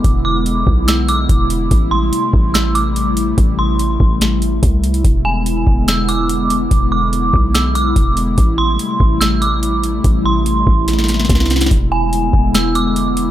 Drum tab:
HH |x-------x-------x---x---x---x---|x-------x-------x---x---x---x---|x-------x-------x---x---x---x-x-|x-------x-------x---x---x---x---|
SD |----------------o---------------|----------------o---------------|----------------o---------------|----------------o---------------|
BD |o-----------o-----------o-------|o-----------o-------------------|o-----------o-----------o-------|o-----------o-------------------|

HH |x-------x-------x---x---x---x---|x-------x-------x---x---x---x---|x-------x-------x---x---x---x-x-|x-------x-------x---x---x---x---|
SD |----------------o---------------|----------------o---------------|----------------oooooooooooooooo|----------------o---------------|
BD |o-----------o-----------o-------|o-----------o-------------------|o-----------o-----------o-------|o-----------o-------------------|